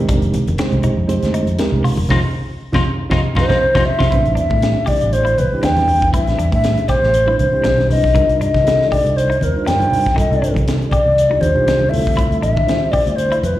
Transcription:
Already playing: G#3 C4 D#4 G4 A#4
0.09 F1 D4, kick, closed hi-hat, low conga
0.22 closed hi-hat
0.34 closed hi-hat, high conga, low conga
0.46 F1, closed hi-hat, high conga
0.58 G#3 C4 D#4 G4 C5, snare, closed hi-hat
0.72 C2, closed hi-hat
0.83 D#4, closed hi-hat, low conga
0.97 F2
1.07 G#3 C4 D#4 G4 C5, closed hi-hat
1.23 D2, snare, closed hi-hat
1.34 D#4, closed hi-hat
1.47 F2, closed hi-hat
1.58 G#3 C4 D#4 G4 A#4, muted fingered electric bass stroke, snare, closed hi-hat
1.72 C2
1.84 F4, open hi-hat, low conga
1.97 F1, high conga
2.09 F2 C4 D#4 F4, kick, snare, low conga
2.73 F2 C4 D#4 F4, kick, snare, low conga
3.09 F2 C4 D#4 F4, kick, snare, low conga
3.34 F2 C4 D#4 F4 C5, kick, snare, low conga
3.48 F2 C4 D#4 F4, kick, snare, low conga
3.74 F2 C4 D#4 F4, kick, snare, low conga
3.85 E5
3.98 F2 C4 D#4 F4, kick, snare, low conga
4.10 A1 G3 C4 D4 E4 B4, kick, closed hi-hat
4.26 A1, closed hi-hat
4.35 E2 D4 E5, closed hi-hat
4.50 A2, kick, high conga
4.61 G3 C4 D4 E4 G4, snare, closed hi-hat
4.86 G4 D5, muted fingered electric bass stroke, kick, open hi-hat, low conga
5.01 A1, closed hi-hat
5.13 C5, closed hi-hat
5.25 E4, closed hi-hat
5.38 C2 B4, closed hi-hat, high conga
5.52 G3 C4 D4 E4 G4, muted fingered electric bass stroke
5.63 E2 D4 G5, snare, closed hi-hat
5.76 G3 C4 D4 E4 B4, snare, closed hi-hat, high conga
5.88 open hi-hat, low conga
6.02 kick
6.12 A1 G3 C4 D4 E4 B4 E5, kick, closed hi-hat
6.27 A1, snare, closed hi-hat
6.38 E2 D4, closed hi-hat
6.52 A2 E5, kick, closed hi-hat, high conga
6.64 snare, closed hi-hat
6.78 closed hi-hat
6.88 G4 C5, muted fingered electric bass stroke, kick, snare, closed hi-hat, low conga
7.02 A1, snare
7.14 closed hi-hat
7.26 G3 C4 D4 E4 B4
7.39 C2 C5, closed hi-hat, high conga
7.53 G3 C4 D4 E4 G4, muted fingered electric bass stroke
7.64 B1 D4, snare, closed hi-hat
7.78 snare, high conga
7.89 G3 C4 D4 E4 B4 D#5, open hi-hat, low conga
8.04 kick, snare
8.13 C2 G3 D4 D#4 F4 A#4, kick, closed hi-hat
8.29 C2, closed hi-hat
8.40 G2 D4 D#5, closed hi-hat
8.54 C3, kick, snare, high conga
8.63 G3 D4 D#4 F4 A4, closed hi-hat
8.68 snare
8.81 snare
8.90 G4 D5, muted fingered electric bass stroke, kick, open hi-hat, low conga
9.05 C2, closed hi-hat
9.16 C5, closed hi-hat
9.30 D#4, closed hi-hat
9.41 D#2 A#4, closed hi-hat, high conga
9.54 G3 D4 D#4 F4 A#4, muted fingered electric bass stroke
9.66 G2 D4 G5, snare, closed hi-hat
9.79 G3 D4 D#4 F4 C5, closed hi-hat, high conga
9.90 open hi-hat, low conga
10.06 kick, snare, closed hi-hat
10.15 C2 G3 C4 D#4 F4 A4 D#5, kick, closed hi-hat
10.31 C2, closed hi-hat
10.42 G2 D4, closed hi-hat
10.54 C3, kick, closed hi-hat, high conga
10.68 snare, closed hi-hat
10.82 closed hi-hat
10.89 G4 D5, muted fingered electric bass stroke, kick, closed hi-hat, high conga, low conga
11.06 C2
11.18 closed hi-hat
11.30 G3 D4 D#4 F4 G4
11.41 D#2 C5, closed hi-hat, high conga
11.54 G3 D4 D#4 F4 G4, muted fingered electric bass stroke, low conga
11.67 C2 D4, snare, closed hi-hat
11.80 high conga
11.89 D2 G3 C4 E4 F4 A4 E5, low conga
11.93 open hi-hat
12.07 kick
12.17 E4, kick, closed hi-hat
12.31 D2, closed hi-hat
12.41 A1 D4 E5, closed hi-hat
12.57 D3, kick, high conga
12.66 G3 C4 E4 F4 C5, snare, closed hi-hat
12.91 G4 D5, muted fingered electric bass stroke, kick, open hi-hat, low conga
13.06 D2, closed hi-hat
13.16 C5, closed hi-hat
13.32 E4, closed hi-hat
13.42 F2 B4, closed hi-hat, high conga
13.55 G3 C4 E4

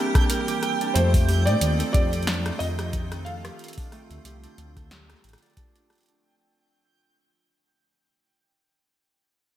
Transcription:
Already playing: E3 G3 A#3 C4 D4 G4 A#4 E5 G5
0.15 D4, kick, cross-stick, closed hi-hat
0.30 A#4, closed hi-hat
0.48 G4, closed hi-hat
0.63 cross-stick, closed hi-hat
0.81 D4, closed hi-hat
0.94 F2 D#3 F3 A3 F4 C5, closed hi-hat
1.14 kick, open hi-hat
1.28 G4, open hi-hat
1.46 A2 D#4 D5, closed hi-hat
1.61 D#2 D#4, closed hi-hat
1.80 A4, closed hi-hat
1.93 F2 G4 D5, kick, closed hi-hat
2.13 closed hi-hat
2.23 closed hi-hat
2.27 D4, snare, closed hi-hat
2.33 closed hi-hat
2.46 A3, cross-stick, closed hi-hat
2.59 F2 D#5, open hi-hat
2.79 G4, cross-stick, closed hi-hat
2.93 D#4, kick, closed hi-hat
3.12 D#4, cross-stick, closed hi-hat
3.25 A4 F5, closed hi-hat
3.44 G4, cross-stick, closed hi-hat
3.59 D3, closed hi-hat
3.64 closed hi-hat
3.68 closed hi-hat
3.73 closed hi-hat
3.78 D4, kick, open hi-hat
3.92 A3, cross-stick, open hi-hat
4.11 D2, closed hi-hat
4.25 C2 G4, closed hi-hat
4.44 D4, closed hi-hat
4.58 D2 D4, closed hi-hat
4.76 A4, kick, cross-stick, closed hi-hat
4.91 G4, snare, closed hi-hat
5.10 cross-stick, closed hi-hat
5.24 A1 D4, closed hi-hat
5.29 closed hi-hat
5.33 cross-stick, closed hi-hat
5.38 closed hi-hat
5.42 D5, closed hi-hat
5.46 closed hi-hat
5.50 closed hi-hat
5.53 D4, closed hi-hat
5.57 kick, closed hi-hat
5.75 D4, closed hi-hat
5.90 D4, cross-stick, closed hi-hat
5.93 closed hi-hat
5.95 closed hi-hat
5.98 closed hi-hat
6.01 closed hi-hat
6.03 closed hi-hat
6.06 D4, closed hi-hat
6.08 closed hi-hat

